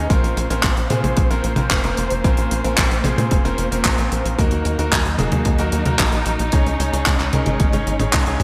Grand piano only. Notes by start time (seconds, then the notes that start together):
0.10 C4 C#4 F4 A#4
0.50 C4 C#4 F4 A#4
0.90 C4 C#4 F4 G#4
1.31 C4 C#4 F4 A#4
1.57 C4 C#4 F4 A#4
1.84 C4 C#4 F4 A#4
2.24 C4 C#4 F4 A#4
2.64 C4 C#4 F4 A#4
3.04 C4 C#4 F4 G#4
3.45 C4 C#4 F4 A#4
3.72 C4 C#4 F4 A#4
3.98 C4 C#4 F4 A#4
4.38 A#3 D#4 F#4 A#4
4.79 A#3 D#4 F#4 A#4
5.19 A#3 D#4 F#4 G#4
5.59 A#3 D#4 F#4 A#4
5.86 A#3 D#4 F#4 A#4
6.12 A#3 D#4 F#4 A#4
6.53 C#4 D#4 G#4 C#5
6.93 C#4 D#4 G#4 C#5
7.33 C#4 D#4 G#4 A#4
7.73 C#4 D#4 G#4 C#5
8.00 C#4 D#4 G#4 C#5
8.27 C#4 D#4 G#4 C#5